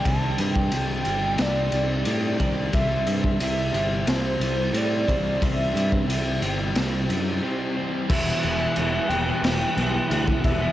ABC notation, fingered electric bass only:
X:1
M:4/4
L:1/8
Q:1/4=90
K:Clyd
V:1 name="Fingered electric bass" clef=bass
C,, G,, C,, G,,, C,, C,, A,, C,, | C,, G,, C,, G,,, C,, C,, A,, C,, | C,, G,, C,, G,,, C,, F,, z2 | E,,, E,,, E,,, E,,, E,,, B,,, D,, E,,, |]